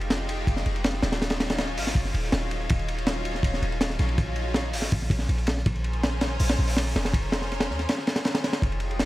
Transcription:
0.00 0.46 F1 loud
0.00 1.01 G#3 loud
0.00 1.01 D#4 loud
0.00 1.01 F4 loud
0.00 1.01 G4 loud
0.00 ride soft
0.10 snare loud
0.10 ride loud
0.29 ride medium
0.47 0.64 F1 loud
0.47 kick loud
0.47 ride medium
0.56 snare medium
0.66 1.02 F1 medium
0.66 ride medium
0.76 ride soft
0.84 snare loud
0.84 ride medium
0.94 snare soft
1.02 1.79 D#1 medium
1.02 1.20 G#3 medium
1.02 1.19 D#4 medium
1.02 1.19 F4 medium
1.02 1.20 G4 medium
1.02 snare loud
1.02 ride medium
1.12 snare loud
1.12 ride medium
1.21 2.12 F#3 loud
1.21 2.12 C#4 loud
1.21 2.12 D#4 loud
1.21 2.12 F4 loud
1.21 snare loud
1.21 ride medium
1.30 snare loud
1.30 ride medium
1.40 snare loud
1.40 ride medium
1.50 snare loud
1.50 ride medium
1.58 snare loud
1.58 ride medium
1.77 1.94 G#1 medium
1.77 open hi-hat medium
1.87 snare medium
1.95 2.12 F#1 medium
1.95 kick loud
1.95 ride medium
2.05 snare soft
2.14 2.31 D#1 loud
2.14 ride medium
2.23 2.67 F#3 medium
2.23 2.67 C#4 medium
2.23 2.67 D#4 medium
2.23 2.67 F4 loud
2.32 2.68 D#1 medium
2.32 snare loud
2.32 ride medium
2.51 ride medium
2.69 3.42 D#1 loud
2.69 3.97 F#3 loud
2.69 3.97 C#4 loud
2.69 3.97 D#4 loud
2.69 3.97 F4 loud
2.69 kick loud
2.69 ride loud
2.79 ride soft
2.88 ride medium
2.98 ride soft
3.07 snare loud
3.07 ride medium
3.25 ride medium
3.35 snare soft
3.43 3.60 D#1 medium
3.43 kick loud
3.43 ride medium
3.54 snare medium
3.62 3.98 D#1 medium
3.62 ride medium
3.72 ride soft
3.81 snare loud
3.81 ride medium
3.90 snare medium
3.99 4.75 A#1 medium
3.99 4.16 F#3 medium
3.99 4.16 C#4 medium
3.99 4.16 D#4 medium
3.99 4.16 F4 medium
3.99 snare soft
3.99 ride medium
4.09 ride soft
4.18 4.91 F#3 loud
4.18 4.91 C#4 medium
4.18 4.91 D#4 loud
4.18 4.91 F4 loud
4.18 kick loud
4.18 ride medium
4.36 ride medium
4.54 snare loud
4.54 ride medium
4.73 4.90 G#1 medium
4.73 open hi-hat medium
4.82 snare medium
4.92 5.09 A#1 medium
4.92 kick loud
4.92 ride medium
5.02 snare soft
5.10 5.27 A#1 loud
5.10 5.24 C#4 medium
5.10 5.24 G#4 medium
5.10 5.24 A#4 medium
5.10 5.24 C5 medium
5.10 kick medium
5.10 ride medium
5.19 snare medium
5.29 5.64 A#1 medium
5.29 ride medium
5.38 ride soft
5.47 snare loud
5.47 ride medium
5.57 snare soft
5.66 6.39 A#1 loud
5.66 6.93 C#4 loud
5.66 6.93 G#4 loud
5.66 6.93 A#4 loud
5.66 6.93 C5 loud
5.66 kick loud
5.66 ride medium
5.75 ride soft
5.84 ride medium
5.93 ride soft
6.03 snare loud
6.03 ride medium
6.21 snare loud
6.21 ride medium
6.40 6.57 A#1 medium
6.40 open hi-hat medium
6.49 snare loud
6.49 ride medium
6.59 6.94 A#1 medium
6.68 open hi-hat medium
6.77 snare loud
6.77 ride medium
6.96 7.71 F1 medium
6.96 7.12 C#4 medium
6.96 7.12 G#4 medium
6.96 7.12 A#4 medium
6.96 7.12 C5 medium
6.96 snare loud
6.96 ride medium
7.05 snare loud
7.05 ride medium
7.14 8.04 C#4 loud
7.14 8.04 G#4 loud
7.14 8.04 A#4 loud
7.14 8.04 C5 loud
7.14 kick loud
7.14 ride loud
7.32 snare loud
7.32 ride medium
7.42 snare soft
7.52 snare soft
7.52 ride medium
7.60 snare loud
7.60 ride medium
7.70 7.86 D#2 medium
7.70 snare soft
7.79 snare soft
7.79 ride medium
7.89 snare loud
7.89 ride medium
7.98 snare soft
8.07 snare medium
8.07 ride medium
8.15 8.60 C#4 medium
8.15 8.60 G#4 medium
8.15 8.60 A#4 medium
8.15 8.60 C5 loud
8.15 snare loud
8.15 ride medium
8.25 snare loud
8.25 ride medium
8.35 snare loud
8.35 ride medium
8.44 snare loud
8.44 ride medium
8.53 snare loud
8.53 ride medium
8.62 9.05 F1 loud
8.62 9.05 G#3 loud
8.62 9.05 D#4 loud
8.62 9.05 F4 loud
8.62 9.05 G4 loud
8.62 kick loud
8.62 ride medium
8.72 ride soft
8.80 ride medium
8.91 ride soft
8.99 snare loud
8.99 ride loud

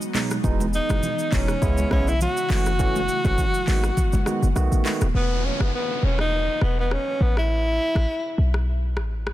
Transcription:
0.00 0.42 F#3 medium
0.00 2.47 G#3 medium
0.00 2.47 B3 medium
0.00 1.59 D#4 medium
0.00 0.43 F#4 medium
0.00 shaker medium
0.14 0.35 B2 medium
0.14 0.35 F#3 medium
0.14 0.36 G#3 medium
0.14 0.36 D#4 medium
0.14 clap loud
0.14 open hi-hat medium
0.14 high conga medium
0.14 shaker medium
0.31 cross-stick medium
0.31 shaker medium
0.44 0.80 E1 loud
0.44 0.65 B2 loud
0.44 0.65 E3 medium
0.44 1.60 E3 medium
0.44 0.65 G#3 medium
0.44 0.65 D#4 loud
0.44 1.61 G#4 medium
0.44 kick loud
0.44 shaker medium
0.60 high conga medium
0.60 shaker medium
0.73 1.35 D#4 loud
0.73 shaker soft
0.90 1.00 F#1 medium
0.90 1.08 B2 medium
0.90 1.09 E3 medium
0.90 1.09 G#3 medium
0.90 1.09 D#4 medium
0.90 cross-stick loud
0.90 high conga medium
0.90 shaker medium
1.03 low conga medium
1.03 shaker medium
1.19 shaker medium
1.32 1.55 E1 medium
1.32 1.53 B2 medium
1.32 1.53 E3 medium
1.32 1.53 G#3 medium
1.32 1.92 C#4 medium
1.32 1.53 D#4 medium
1.32 kick loud
1.32 clap medium
1.32 open hi-hat medium
1.32 high conga medium
1.32 shaker medium
1.48 cross-stick loud
1.48 shaker medium
1.61 1.85 C#2 loud
1.61 1.89 C#3 medium
1.61 3.66 C#3 medium
1.61 2.49 E3 medium
1.61 1.89 G#3 medium
1.61 1.89 B3 medium
1.61 2.49 E4 medium
1.61 1.89 E4 loud
1.61 kick medium
1.61 shaker medium
1.77 high conga medium
1.77 shaker medium
1.91 2.27 B1 medium
1.91 2.12 C#3 medium
1.91 2.12 G#3 medium
1.91 2.12 B3 medium
1.91 2.10 C#4 medium
1.91 2.12 E4 medium
1.91 kick medium
1.91 cross-stick medium
1.91 high conga medium
2.08 2.21 E4 loud
2.08 shaker medium
2.21 4.53 F#4 loud
2.21 low conga medium
2.21 shaker medium
2.37 shaker medium
2.50 3.08 F#1 loud
2.50 2.71 E3 medium
2.50 3.66 E3 medium
2.50 5.12 F#3 medium
2.50 2.71 A3 medium
2.50 3.66 A3 medium
2.50 2.71 C#4 medium
2.50 3.66 E4 medium
2.50 2.71 F#4 medium
2.50 clap loud
2.50 open hi-hat medium
2.50 high conga medium
2.50 shaker medium
2.66 cross-stick medium
2.66 shaker medium
2.79 3.00 E3 medium
2.79 3.00 A3 medium
2.79 3.00 C#4 medium
2.79 3.00 F#4 loud
2.79 kick loud
2.79 shaker medium
2.96 high conga medium
2.96 shaker medium
3.08 shaker soft
3.25 3.35 F#1 medium
3.25 3.44 E3 medium
3.25 3.44 A3 medium
3.25 3.44 C#4 medium
3.25 3.44 F#4 medium
3.25 kick loud
3.25 cross-stick loud
3.25 high conga medium
3.25 shaker medium
3.38 kick loud
3.38 low conga medium
3.38 shaker medium
3.54 shaker medium
3.67 3.91 G#1 loud
3.67 3.88 D#3 medium
3.67 5.13 D#3 medium
3.67 3.88 G#3 medium
3.67 4.55 G#3 medium
3.67 4.55 B3 medium
3.67 3.88 B3 medium
3.67 5.13 F#4 medium
3.67 3.89 F#4 medium
3.67 clap loud
3.67 open hi-hat medium
3.67 high conga medium
3.67 shaker medium
3.84 cross-stick loud
3.84 shaker medium
3.97 kick medium
3.97 low conga medium
3.97 shaker medium
4.13 4.24 F#1 medium
4.13 high conga medium
4.13 shaker medium
4.26 4.47 D#3 medium
4.26 4.47 G#3 medium
4.26 4.47 B3 medium
4.26 4.47 F#4 medium
4.26 cross-stick loud
4.26 high conga medium
4.26 shaker medium
4.42 4.53 F#1 medium
4.42 shaker medium
4.55 4.68 B1 loud
4.55 4.83 D#3 medium
4.55 4.83 A3 medium
4.55 5.14 A3 medium
4.55 5.14 B3 medium
4.55 4.83 B3 medium
4.55 4.83 F#4 loud
4.55 cross-stick medium
4.55 low conga medium
4.55 shaker medium
4.72 4.82 A1 medium
4.72 shaker soft
4.85 5.06 D#3 medium
4.85 5.06 A3 medium
4.85 5.06 B3 medium
4.85 5.06 F#4 medium
4.85 clap loud
4.85 open hi-hat medium
4.85 high conga medium
4.85 shaker medium
5.01 5.12 D#1 medium
5.01 cross-stick loud
5.01 shaker medium
5.14 5.50 E1 loud
5.14 5.47 B3 medium
5.14 downlifter medium
5.45 5.63 C#4 medium
5.60 5.71 F#1 medium
5.60 5.74 B3 medium
5.60 cross-stick loud
5.75 6.06 B3 medium
6.03 6.49 E1 medium
6.03 6.20 C#4 medium
6.19 6.59 D#4 loud
6.19 cross-stick medium
6.61 6.97 E1 medium
6.61 6.77 B3 medium
6.61 cross-stick medium
6.79 6.94 B3 medium
6.91 7.23 C#4 medium
6.91 cross-stick medium
7.21 7.79 A1 medium
7.21 7.37 B3 medium
7.37 8.51 E4 loud
7.37 cross-stick medium
7.95 8.06 A1 medium
7.95 cross-stick loud
8.38 8.98 B1 medium
8.54 cross-stick medium
8.97 9.33 A1 medium
8.97 cross-stick medium
9.27 cross-stick medium

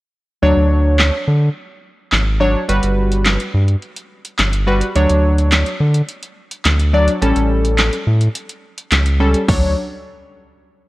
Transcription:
0.42 0.53 D2 loud
0.42 1.15 F#3 medium
0.42 1.15 D4 medium
0.42 1.15 C#5 medium
0.57 1.11 D2 medium
0.99 snare medium
0.99 clap loud
1.27 1.49 D3 medium
2.12 2.56 G#1 medium
2.12 snare medium
2.12 clap loud
2.40 2.59 F#3 medium
2.40 2.59 D4 medium
2.40 2.59 C#5 medium
2.69 2.80 G1 loud
2.69 3.41 G3 medium
2.69 3.41 F#4 medium
2.69 3.42 B4 medium
2.69 closed hi-hat medium
2.83 3.37 G1 medium
2.83 closed hi-hat medium
3.12 closed hi-hat soft
3.26 snare medium
3.26 clap loud
3.26 closed hi-hat medium
3.40 closed hi-hat soft
3.54 3.76 G2 medium
3.68 closed hi-hat medium
3.82 closed hi-hat medium
3.96 closed hi-hat medium
4.25 closed hi-hat medium
4.39 4.82 G1 loud
4.39 snare medium
4.39 clap loud
4.39 closed hi-hat medium
4.53 closed hi-hat medium
4.67 4.85 G3 medium
4.67 4.85 F#4 medium
4.67 4.85 B4 medium
4.81 closed hi-hat medium
4.95 5.06 D2 loud
4.95 5.68 F#3 medium
4.95 5.68 D4 medium
4.95 5.68 C#5 medium
4.95 closed hi-hat medium
5.09 5.64 D2 medium
5.09 closed hi-hat medium
5.38 closed hi-hat soft
5.52 snare medium
5.52 clap loud
5.52 closed hi-hat medium
5.66 closed hi-hat soft
5.80 6.02 D3 medium
5.94 closed hi-hat medium
6.09 closed hi-hat medium
6.23 closed hi-hat medium
6.51 closed hi-hat medium
6.65 7.09 D2 medium
6.65 snare medium
6.65 clap loud
6.65 closed hi-hat medium
6.80 closed hi-hat medium
6.93 7.12 F#3 medium
6.93 7.12 D4 medium
6.93 7.12 D5 medium
7.08 closed hi-hat medium
7.22 7.33 A1 loud
7.22 7.94 G3 medium
7.22 7.94 C#4 medium
7.22 7.94 A4 medium
7.22 closed hi-hat medium
7.36 7.90 A1 medium
7.36 closed hi-hat medium
7.65 closed hi-hat soft
7.78 snare medium
7.78 clap loud
7.78 closed hi-hat medium
7.93 closed hi-hat soft
8.07 8.29 A2 medium
8.21 closed hi-hat medium
8.35 closed hi-hat medium
8.49 closed hi-hat medium
8.78 closed hi-hat medium
8.92 9.35 C#2 loud
8.92 snare medium
8.92 clap loud
8.92 closed hi-hat medium
9.06 closed hi-hat medium
9.20 9.38 G3 medium
9.20 9.38 C#4 medium
9.20 9.38 A4 medium
9.34 closed hi-hat medium
9.48 9.75 D2 medium
9.48 9.75 F#3 medium
9.48 9.75 D4 medium
9.48 9.75 C#5 medium
9.48 kick loud
9.48 floor tom loud
9.48 open hi-hat medium

